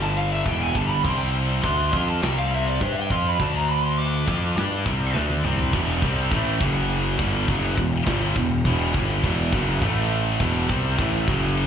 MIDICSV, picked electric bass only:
0, 0, Header, 1, 2, 480
1, 0, Start_track
1, 0, Tempo, 584795
1, 861, Time_signature, 4, 2, 24, 8
1, 9577, End_track
2, 0, Start_track
2, 0, Title_t, "Picked electric bass"
2, 0, Program_c, 0, 34
2, 0, Note_on_c, 0, 31, 92
2, 343, Note_off_c, 0, 31, 0
2, 376, Note_on_c, 0, 28, 87
2, 602, Note_off_c, 0, 28, 0
2, 618, Note_on_c, 0, 31, 88
2, 844, Note_off_c, 0, 31, 0
2, 862, Note_on_c, 0, 36, 99
2, 1311, Note_off_c, 0, 36, 0
2, 1345, Note_on_c, 0, 38, 105
2, 1569, Note_off_c, 0, 38, 0
2, 1584, Note_on_c, 0, 41, 104
2, 1809, Note_off_c, 0, 41, 0
2, 1826, Note_on_c, 0, 36, 100
2, 2275, Note_off_c, 0, 36, 0
2, 2311, Note_on_c, 0, 43, 90
2, 2533, Note_off_c, 0, 43, 0
2, 2550, Note_on_c, 0, 41, 93
2, 2773, Note_off_c, 0, 41, 0
2, 2788, Note_on_c, 0, 38, 94
2, 3477, Note_off_c, 0, 38, 0
2, 3512, Note_on_c, 0, 41, 101
2, 3734, Note_off_c, 0, 41, 0
2, 3746, Note_on_c, 0, 43, 94
2, 3971, Note_off_c, 0, 43, 0
2, 3990, Note_on_c, 0, 36, 94
2, 4213, Note_off_c, 0, 36, 0
2, 4222, Note_on_c, 0, 38, 89
2, 4449, Note_off_c, 0, 38, 0
2, 4465, Note_on_c, 0, 36, 95
2, 4690, Note_off_c, 0, 36, 0
2, 4711, Note_on_c, 0, 28, 95
2, 4933, Note_off_c, 0, 28, 0
2, 4942, Note_on_c, 0, 36, 92
2, 5168, Note_off_c, 0, 36, 0
2, 5185, Note_on_c, 0, 33, 108
2, 5409, Note_off_c, 0, 33, 0
2, 5421, Note_on_c, 0, 30, 107
2, 5871, Note_off_c, 0, 30, 0
2, 5901, Note_on_c, 0, 31, 95
2, 6127, Note_off_c, 0, 31, 0
2, 6145, Note_on_c, 0, 30, 94
2, 6368, Note_off_c, 0, 30, 0
2, 6382, Note_on_c, 0, 28, 85
2, 6606, Note_off_c, 0, 28, 0
2, 6621, Note_on_c, 0, 31, 99
2, 6845, Note_off_c, 0, 31, 0
2, 6862, Note_on_c, 0, 28, 84
2, 7086, Note_off_c, 0, 28, 0
2, 7103, Note_on_c, 0, 28, 104
2, 7326, Note_off_c, 0, 28, 0
2, 7341, Note_on_c, 0, 31, 95
2, 7564, Note_off_c, 0, 31, 0
2, 7585, Note_on_c, 0, 28, 102
2, 7807, Note_off_c, 0, 28, 0
2, 7821, Note_on_c, 0, 30, 103
2, 8044, Note_off_c, 0, 30, 0
2, 8057, Note_on_c, 0, 33, 96
2, 8505, Note_off_c, 0, 33, 0
2, 8540, Note_on_c, 0, 28, 96
2, 8763, Note_off_c, 0, 28, 0
2, 8779, Note_on_c, 0, 36, 93
2, 9002, Note_off_c, 0, 36, 0
2, 9018, Note_on_c, 0, 33, 104
2, 9241, Note_off_c, 0, 33, 0
2, 9261, Note_on_c, 0, 30, 100
2, 9577, Note_off_c, 0, 30, 0
2, 9577, End_track
0, 0, End_of_file